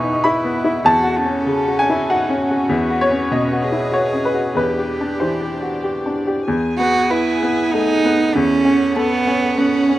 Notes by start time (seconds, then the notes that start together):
Already playing: E2 B2 E3 B3 D#4 E4 B4 G#5 C#6
0.03 D#4
0.24 E4 B5
0.44 B3
0.64 E4
0.85 E2 C#4 F#4 A4 A5
1.04 F#4
1.18 C#4
1.25 C#4
1.46 C#3
1.68 F#4
1.79 G#5
1.90 E4
2.09 D#4 F#4 F#5
2.29 C#4
2.42 C#4
2.51 F#4
2.69 E2 B3 B4
2.90 F#4
3.01 C#5
3.11 C#4
3.31 B2 C#4 D#5
3.52 F#4
3.64 G#4
3.72 E4
3.92 F#4 C#5
4.13 C#4
4.25 B4
4.34 F#4
4.55 E2 D4 G4 B4 D5
4.78 G4
5.01 D4
5.20 E3 C5
5.41 G4
5.62 F#4
5.84 G4
6.06 D4
6.27 G4
6.48 E2 B3 G#4 G#5
6.78 B3 F#4
7.10 E4 B4
7.43 B3
7.71 A3 D#4
8.05 B3
8.35 E2 C#4 A4 F#5
8.65 C#4
8.96 B3 A4
9.27 C#4
9.58 B3 C#4
9.89 C#4